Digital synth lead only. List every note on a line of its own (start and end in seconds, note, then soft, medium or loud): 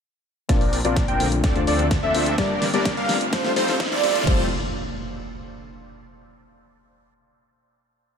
0.49 0.79 D5 medium
0.85 1.05 D5 loud
1.08 1.27 G5 loud
1.44 1.62 D5 medium
1.67 1.86 D5 medium
2.03 2.35 E5 loud
2.38 2.68 D5 medium
2.74 2.94 D5 loud
2.97 3.16 F5 loud
3.33 3.51 C5 medium
3.56 3.75 C5 medium
3.92 4.24 D5 loud
4.27 4.45 C5 loud